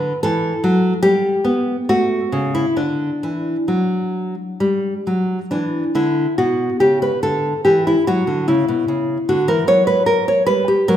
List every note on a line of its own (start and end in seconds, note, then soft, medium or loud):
0.00 0.12 D3 medium
0.00 0.20 B4 loud
0.23 0.52 E3 medium
0.23 1.00 A4 medium
0.64 0.93 F#3 medium
1.03 1.33 G3 medium
1.03 1.84 G4 medium
1.45 1.75 B3 medium
1.89 2.20 A3 medium
1.89 2.52 F#4 medium
2.32 2.64 C#3 medium
2.55 2.77 E4 medium
2.77 3.09 D3 soft
2.77 5.46 D4 medium
3.23 3.55 E3 soft
3.68 4.34 F#3 soft
4.60 4.93 G3 medium
5.07 5.38 F#3 soft
5.51 5.83 E3 soft
5.51 5.93 D4 medium
5.95 6.26 D3 medium
5.95 6.36 E4 medium
6.38 6.69 B2 soft
6.38 6.78 F#4 medium
6.80 7.11 C#3 soft
6.80 7.01 G4 medium
7.02 7.22 B4 medium
7.23 7.53 D3 soft
7.23 7.63 A4 medium
7.65 7.95 E3 soft
7.65 7.85 G4 medium
7.87 8.07 E4 medium
8.07 8.26 F#3 soft
8.07 8.46 F#4 medium
8.27 8.46 D3 soft
8.48 8.67 C#3 medium
8.48 9.24 E4 medium
8.68 8.87 B2 soft
8.88 9.17 C#3 soft
9.29 9.47 D3 medium
9.29 9.48 F#4 medium
9.48 9.66 E3 medium
9.48 9.68 A#4 medium
9.67 10.26 F#3 soft
9.67 9.87 C#5 medium
9.87 10.06 B4 medium
10.06 10.27 A#4 medium
10.28 10.46 C#5 medium
10.47 10.76 G3 soft
10.47 10.67 B4 medium
10.68 10.88 G4 medium
10.88 10.97 F#3 medium
10.88 10.97 A#4 medium